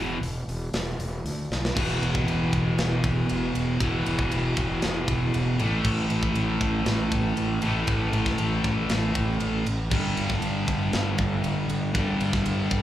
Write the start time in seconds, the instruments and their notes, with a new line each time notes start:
Already playing: fingered electric bass E1, distorted electric guitar E2 B2 E3
0.21 fingered electric bass E1, open hi-hat
0.48 fingered electric bass E1, open hi-hat
0.74 fingered electric bass E1, snare, open hi-hat
0.99 fingered electric bass E1, open hi-hat
1.24 fingered electric bass D2, open hi-hat
1.50 fingered electric bass B1, snare
1.65 snare
1.75 fingered electric bass E1, distorted electric guitar E2 B2 E3, kick, crash
2.02 fingered electric bass E1, ride
2.15 kick
2.28 fingered electric bass E1, ride
2.53 fingered electric bass E1, kick, ride
2.78 fingered electric bass E1, snare, ride
3.04 fingered electric bass E1, kick, ride
3.29 fingered electric bass E1, ride
3.55 fingered electric bass E1, ride
3.79 fingered electric bass E1, distorted electric guitar E2 B2 E3, kick, ride
4.06 fingered electric bass E1, ride
4.19 kick
4.31 fingered electric bass E1, ride
4.57 fingered electric bass E1, kick, ride
4.82 fingered electric bass E1, snare, ride
5.08 fingered electric bass E1, kick, ride
5.34 fingered electric bass E1, ride
5.58 fingered electric bass A1, distorted electric guitar A2 E3 A3, ride
5.84 fingered electric bass A1, kick, crash
6.10 fingered electric bass A1, ride
6.23 kick
6.35 fingered electric bass A1, ride
6.61 fingered electric bass A1, kick, ride
6.86 fingered electric bass A1, snare, ride
7.12 fingered electric bass A1, kick, ride
7.36 fingered electric bass A1, ride
7.62 fingered electric bass A1, distorted electric guitar A2 E3 A3, ride
7.87 fingered electric bass A1, kick, ride
8.13 fingered electric bass A1, ride
8.26 kick, snare
8.38 fingered electric bass A1, ride
8.64 fingered electric bass A1, kick, ride
8.89 fingered electric bass A1, snare, ride
9.15 fingered electric bass A1, kick, ride
9.40 fingered electric bass A1, ride
9.66 fingered electric bass A1, ride
9.90 fingered electric bass G1, distorted electric guitar G2 D3 G3, kick, crash
10.17 fingered electric bass G1, ride
10.30 kick, snare
10.42 fingered electric bass G1, ride
10.68 fingered electric bass G1, kick, ride
10.93 fingered electric bass G1, snare, ride
11.18 fingered electric bass G1, kick, ride
11.44 fingered electric bass G1, ride
11.69 fingered electric bass G1, ride
11.93 fingered electric bass G1, distorted electric guitar G2 D3 G3, kick, ride
12.20 fingered electric bass G1, ride
12.33 kick, snare
12.46 fingered electric bass G1, ride
12.71 fingered electric bass G1, kick, ride